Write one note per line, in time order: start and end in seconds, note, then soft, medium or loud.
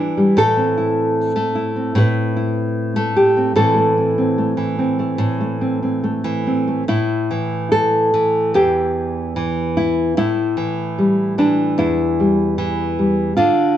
0.00 1.35 E3 medium
0.00 0.16 G3 soft
0.00 0.32 D4 medium
0.00 0.38 E4 soft
0.17 0.37 G3 soft
0.37 1.95 A2 medium
0.37 1.96 A4 loud
0.57 1.76 C4 medium
0.77 1.55 E4 soft
1.36 2.96 A3 medium
1.55 2.36 E4 medium
1.76 3.36 C4 soft
1.95 3.55 A2 medium
1.95 3.56 B4 loud
2.37 3.16 E4 soft
2.96 3.56 A3 medium
3.16 3.56 G4 medium
3.37 3.57 C4 soft
3.56 5.17 A2 medium
3.56 4.56 E3 medium
3.56 3.76 A3 medium
3.56 3.96 C4 medium
3.56 6.88 A4 medium
3.77 4.37 A3 soft
3.98 4.17 C4 soft
4.18 4.77 C4 soft
4.38 4.98 A3 soft
4.57 6.23 E3 medium
4.79 5.60 C4 soft
4.99 5.39 A3 soft
5.18 6.87 A2 medium
5.41 6.02 A3 soft
5.61 5.81 C4 soft
5.83 6.46 C4 soft
6.04 6.66 A3 medium
6.24 6.83 E3 medium
6.47 6.83 C4 soft
6.68 6.83 A3 soft
6.88 8.54 A2 medium
6.88 7.71 E4 loud
7.31 8.13 E3 medium
7.72 8.54 A4 loud
8.14 9.35 E3 medium
8.54 10.17 E2 medium
8.54 9.77 G4 loud
9.36 10.12 E3 medium
9.77 10.16 E4 medium
10.17 11.78 A2 medium
10.17 11.77 E4 medium
10.57 11.37 E3 medium
10.98 12.18 G3 medium
11.38 12.57 E3 medium
11.38 12.58 D4 medium
11.78 13.37 E2 medium
11.78 13.37 E4 medium
12.20 12.97 G3 soft
12.58 13.32 E3 medium
12.99 13.38 G3 soft
13.37 13.77 D3 medium
13.37 13.77 D4 medium
13.37 13.77 F4 loud